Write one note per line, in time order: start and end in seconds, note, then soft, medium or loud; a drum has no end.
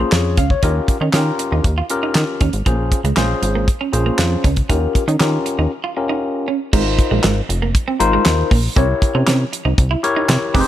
0.00 0.36 C#4 medium
0.00 0.37 F4 medium
0.00 0.37 G#4 medium
0.00 0.12 C5 medium
0.12 0.39 F2 medium
0.12 0.36 C#5 medium
0.12 snare loud
0.12 clap medium
0.12 closed hi-hat medium
0.37 0.55 C#2 medium
0.37 0.46 C#4 medium
0.37 0.50 F5 medium
0.37 kick loud
0.37 closed hi-hat medium
0.50 0.75 C#5 medium
0.50 kick medium
0.63 0.80 D#2 loud
0.63 0.96 C#4 medium
0.63 0.71 D#4 medium
0.63 0.96 F4 medium
0.63 0.96 G4 medium
0.63 0.97 A#4 medium
0.63 kick loud
0.63 closed hi-hat medium
0.88 muted clean electric guitar stroke soft
0.88 kick loud
0.88 closed hi-hat medium
1.01 1.10 D#3 medium
1.01 1.09 C#4 medium
1.13 1.31 D#3 loud
1.13 1.64 C#4 medium
1.13 1.22 C#4 medium
1.13 1.64 F4 medium
1.13 1.64 G4 medium
1.13 1.64 A#4 medium
1.13 snare loud
1.13 clap medium
1.13 closed hi-hat medium
1.39 muted clean electric guitar stroke soft
1.39 closed hi-hat medium
1.52 1.61 D#2 medium
1.52 1.60 D#4 medium
1.64 1.82 D#2 loud
1.64 kick loud
1.64 closed hi-hat medium
1.78 1.85 F4 medium
1.90 2.40 C#4 medium
1.90 2.40 F4 medium
1.90 2.40 G4 medium
1.90 2.40 A#4 medium
1.90 muted clean electric guitar stroke soft
1.90 closed hi-hat medium
2.03 2.11 D#4 medium
2.15 2.24 D#3 loud
2.15 snare loud
2.15 clap medium
2.15 closed hi-hat medium
2.41 2.50 D#2 medium
2.41 2.49 C#4 medium
2.41 kick loud
2.41 closed hi-hat medium
2.53 2.62 G#1 medium
2.53 closed hi-hat medium
2.66 2.93 A#1 loud
2.66 2.74 A#3 medium
2.66 2.99 C#4 medium
2.66 2.99 F4 medium
2.66 3.00 G#4 medium
2.66 3.00 C5 medium
2.66 kick loud
2.66 closed hi-hat medium
2.92 muted clean electric guitar stroke soft
2.92 kick loud
2.92 closed hi-hat medium
3.04 3.13 C#2 medium
3.04 3.13 G#3 medium
3.04 closed hi-hat medium
3.16 3.35 A#1 medium
3.16 3.25 G#3 medium
3.16 3.67 C#4 medium
3.16 3.67 F4 medium
3.16 3.67 G#4 medium
3.16 3.67 C5 medium
3.16 snare loud
3.16 clap medium
3.16 closed hi-hat medium
3.42 3.69 G#1 loud
3.42 muted clean electric guitar stroke soft
3.42 closed hi-hat medium
3.55 3.63 A#3 medium
3.68 kick loud
3.68 closed hi-hat medium
3.81 3.89 C#4 medium
3.93 4.11 A#1 medium
3.93 4.43 C#4 medium
3.93 4.43 F4 medium
3.93 4.43 G#4 medium
3.93 4.43 C5 medium
3.93 muted clean electric guitar stroke soft
3.93 closed hi-hat medium
4.06 4.14 A#3 medium
4.18 4.36 F2 loud
4.18 snare loud
4.18 clap medium
4.18 closed hi-hat medium
4.44 4.62 C#2 medium
4.44 4.52 C#4 medium
4.44 kick loud
4.44 closed hi-hat medium
4.56 kick medium
4.56 closed hi-hat medium
4.69 4.87 D#2 loud
4.69 5.03 C#4 medium
4.69 4.77 D#4 medium
4.69 5.03 F4 medium
4.69 5.03 G4 medium
4.69 5.03 A#4 medium
4.69 kick loud
4.69 closed hi-hat medium
4.95 muted clean electric guitar stroke soft
4.95 kick loud
4.95 closed hi-hat medium
5.08 5.17 D#3 medium
5.08 5.16 C#4 medium
5.08 closed hi-hat medium
5.20 5.38 D#3 loud
5.20 5.70 C#4 medium
5.20 5.28 C#4 medium
5.20 5.70 F4 medium
5.20 5.71 G4 medium
5.20 5.71 A#4 medium
5.20 snare loud
5.20 clap medium
5.20 closed hi-hat medium
5.46 muted clean electric guitar stroke soft
5.46 closed hi-hat medium
5.58 5.67 D#2 medium
5.58 5.67 D#4 medium
5.84 5.92 F4 medium
5.97 6.47 C#4 medium
5.97 6.47 F4 medium
5.97 6.47 G4 medium
5.97 6.47 A#4 medium
5.97 muted clean electric guitar stroke soft
6.09 6.17 D#4 medium
6.48 6.56 C#4 medium
6.73 7.00 G#1 loud
6.73 6.81 G#3 medium
6.73 7.40 D#4 medium
6.73 7.40 F4 medium
6.73 7.40 A#4 medium
6.73 7.40 C5 medium
6.73 kick loud
6.73 crash medium
6.99 muted clean electric guitar stroke soft
6.99 kick loud
6.99 closed hi-hat medium
7.11 7.20 A#1 medium
7.11 7.19 G#3 medium
7.23 7.42 G#1 medium
7.23 7.32 G#3 medium
7.23 snare loud
7.23 clap medium
7.23 closed hi-hat medium
7.49 7.76 F1 medium
7.49 muted clean electric guitar stroke soft
7.49 closed hi-hat medium
7.62 7.70 A#3 medium
7.75 kick loud
7.75 closed hi-hat medium
7.88 7.95 C4 medium
8.00 8.18 G#1 medium
8.00 8.50 D#4 medium
8.00 8.50 F4 medium
8.00 8.50 A#4 medium
8.00 8.50 C5 loud
8.00 muted clean electric guitar stroke soft
8.00 closed hi-hat medium
8.13 8.21 G#3 medium
8.25 8.44 D#2 loud
8.25 snare loud
8.25 clap loud
8.25 closed hi-hat medium
8.51 8.69 A#1 medium
8.51 8.59 A#3 medium
8.51 kick loud
8.51 open hi-hat medium
8.76 8.94 C2 loud
8.76 8.84 C4 medium
8.76 9.43 E4 medium
8.76 9.43 G4 medium
8.76 9.43 A#4 medium
8.76 9.43 C#5 medium
8.76 kick loud
8.76 closed hi-hat medium
9.02 muted clean electric guitar stroke soft
9.02 kick loud
9.02 closed hi-hat medium
9.15 9.24 C3 loud
9.15 9.23 C#4 medium
9.27 9.45 C3 loud
9.27 9.35 C#4 medium
9.27 snare loud
9.27 clap medium
9.27 closed hi-hat loud
9.53 muted clean electric guitar stroke soft
9.53 closed hi-hat medium
9.65 9.74 C2 medium
9.65 9.73 D#4 medium
9.78 9.96 C2 loud
9.78 kick loud
9.78 closed hi-hat medium
9.91 9.99 E4 medium
10.03 10.53 E4 medium
10.03 10.53 G4 medium
10.03 10.54 A#4 medium
10.03 10.54 C#5 loud
10.03 muted clean electric guitar stroke soft
10.03 closed hi-hat medium
10.16 10.24 D#4 medium
10.29 10.38 C3 loud
10.29 snare loud
10.29 clap loud
10.29 closed hi-hat medium
10.54 10.63 F1 medium
10.54 10.62 C4 medium
10.54 10.68 D#4 medium
10.54 10.68 G4 medium
10.54 10.68 G#4 medium
10.54 10.61 B4 medium
10.54 kick loud
10.54 open hi-hat medium
10.61 10.68 C5 medium